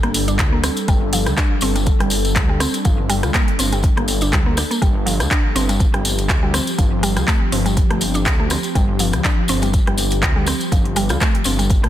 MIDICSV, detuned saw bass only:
0, 0, Header, 1, 2, 480
1, 0, Start_track
1, 0, Tempo, 491803
1, 862, Time_signature, 4, 2, 24, 8
1, 11606, End_track
2, 0, Start_track
2, 0, Title_t, "Detuned saw bass"
2, 0, Program_c, 0, 39
2, 28, Note_on_c, 0, 31, 86
2, 381, Note_on_c, 0, 38, 100
2, 396, Note_off_c, 0, 31, 0
2, 677, Note_off_c, 0, 38, 0
2, 862, Note_on_c, 0, 31, 104
2, 1230, Note_on_c, 0, 38, 98
2, 1245, Note_off_c, 0, 31, 0
2, 1301, Note_off_c, 0, 38, 0
2, 1579, Note_on_c, 0, 31, 89
2, 1876, Note_off_c, 0, 31, 0
2, 1950, Note_on_c, 0, 31, 88
2, 2302, Note_on_c, 0, 38, 95
2, 2317, Note_off_c, 0, 31, 0
2, 2598, Note_off_c, 0, 38, 0
2, 2784, Note_on_c, 0, 31, 106
2, 3156, Note_on_c, 0, 38, 97
2, 3170, Note_off_c, 0, 31, 0
2, 3224, Note_off_c, 0, 38, 0
2, 3504, Note_on_c, 0, 31, 94
2, 3799, Note_off_c, 0, 31, 0
2, 3876, Note_on_c, 0, 31, 90
2, 4222, Note_on_c, 0, 38, 97
2, 4237, Note_off_c, 0, 31, 0
2, 4518, Note_off_c, 0, 38, 0
2, 4704, Note_on_c, 0, 31, 104
2, 5077, Note_on_c, 0, 38, 98
2, 5092, Note_off_c, 0, 31, 0
2, 5145, Note_off_c, 0, 38, 0
2, 5424, Note_on_c, 0, 31, 92
2, 5719, Note_off_c, 0, 31, 0
2, 5793, Note_on_c, 0, 31, 85
2, 6143, Note_on_c, 0, 38, 98
2, 6158, Note_off_c, 0, 31, 0
2, 6439, Note_off_c, 0, 38, 0
2, 6624, Note_on_c, 0, 31, 103
2, 6993, Note_on_c, 0, 38, 99
2, 7008, Note_off_c, 0, 31, 0
2, 7063, Note_off_c, 0, 38, 0
2, 7342, Note_on_c, 0, 31, 90
2, 7638, Note_off_c, 0, 31, 0
2, 7713, Note_on_c, 0, 31, 86
2, 8062, Note_on_c, 0, 38, 93
2, 8077, Note_off_c, 0, 31, 0
2, 8358, Note_off_c, 0, 38, 0
2, 8545, Note_on_c, 0, 31, 102
2, 8915, Note_on_c, 0, 38, 98
2, 8930, Note_off_c, 0, 31, 0
2, 8984, Note_off_c, 0, 38, 0
2, 9259, Note_on_c, 0, 31, 89
2, 9556, Note_off_c, 0, 31, 0
2, 9631, Note_on_c, 0, 31, 84
2, 9982, Note_on_c, 0, 38, 100
2, 9996, Note_off_c, 0, 31, 0
2, 10278, Note_off_c, 0, 38, 0
2, 10462, Note_on_c, 0, 31, 103
2, 10832, Note_on_c, 0, 38, 97
2, 10847, Note_off_c, 0, 31, 0
2, 10902, Note_off_c, 0, 38, 0
2, 11180, Note_on_c, 0, 31, 89
2, 11550, Note_on_c, 0, 38, 94
2, 11565, Note_off_c, 0, 31, 0
2, 11606, Note_off_c, 0, 38, 0
2, 11606, End_track
0, 0, End_of_file